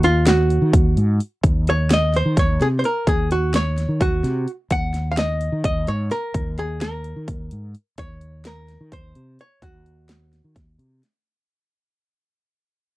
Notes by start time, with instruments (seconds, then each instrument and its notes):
Already playing: fretless electric bass D#2
0.03 hollow-body jazz guitar F4, closed hi-hat
0.27 hollow-body jazz guitar F#4, snare, closed hi-hat
0.50 closed hi-hat
0.62 fretless electric bass D#3
0.73 fretless electric bass D#2, kick, closed hi-hat
0.97 fretless electric bass G#2, closed hi-hat
1.20 closed hi-hat
1.44 fretless electric bass D#2, kick, closed hi-hat
1.67 hollow-body jazz guitar C#5, closed hi-hat
1.90 hollow-body jazz guitar D#5, snare, closed hi-hat
2.14 hollow-body jazz guitar C5, snare, closed hi-hat
2.25 fretless electric bass D#3
2.37 fretless electric bass D#2, hollow-body jazz guitar C#5, kick, snare, closed hi-hat
2.61 fretless electric bass C3, hollow-body jazz guitar G#4, snare, closed hi-hat
2.79 hollow-body jazz guitar C5
2.84 hollow-body jazz guitar A#4, closed hi-hat
3.07 fretless electric bass D#2, hollow-body jazz guitar G#4, kick, closed hi-hat
3.31 hollow-body jazz guitar F#4, closed hi-hat
3.54 hollow-body jazz guitar C#5, snare, closed hi-hat
3.78 snare, closed hi-hat
3.89 fretless electric bass D#3
4.00 fretless electric bass D#2, hollow-body jazz guitar F#4, kick, closed hi-hat
4.24 fretless electric bass C3, snare, closed hi-hat
4.48 closed hi-hat
4.70 fretless electric bass D#2, hollow-body jazz guitar F#5, kick, closed hi-hat
4.94 snare, closed hi-hat
5.12 hollow-body jazz guitar F5
5.17 hollow-body jazz guitar D#5, snare, closed hi-hat
5.41 closed hi-hat
5.52 fretless electric bass D#3
5.64 fretless electric bass D#2, hollow-body jazz guitar D#5, kick, closed hi-hat
5.87 fretless electric bass G#2, hollow-body jazz guitar C#5, closed hi-hat
6.11 hollow-body jazz guitar A#4, snare, closed hi-hat
6.34 fretless electric bass D#2, kick, closed hi-hat
6.58 hollow-body jazz guitar G#4, closed hi-hat
6.81 hollow-body jazz guitar A#4, snare, closed hi-hat
7.04 closed hi-hat
7.16 fretless electric bass D#3
7.28 fretless electric bass D#2, kick, closed hi-hat
7.51 fretless electric bass G#2, closed hi-hat
7.75 closed hi-hat
7.98 fretless electric bass D#2, hollow-body jazz guitar C#5, kick, closed hi-hat
8.21 closed hi-hat
8.45 hollow-body jazz guitar A#4, snare, closed hi-hat
8.68 snare, closed hi-hat
8.81 fretless electric bass D#3
8.92 fretless electric bass D#2, hollow-body jazz guitar C5, kick, closed hi-hat
9.15 fretless electric bass C3, closed hi-hat
9.39 hollow-body jazz guitar C#5, closed hi-hat
9.62 fretless electric bass D#2, hollow-body jazz guitar F#4, kick, closed hi-hat
9.86 closed hi-hat
10.09 snare, closed hi-hat
10.33 snare, closed hi-hat
10.44 fretless electric bass D#3
10.55 fretless electric bass D#2, kick, snare, closed hi-hat
10.79 fretless electric bass C3, closed hi-hat
11.03 snare, closed hi-hat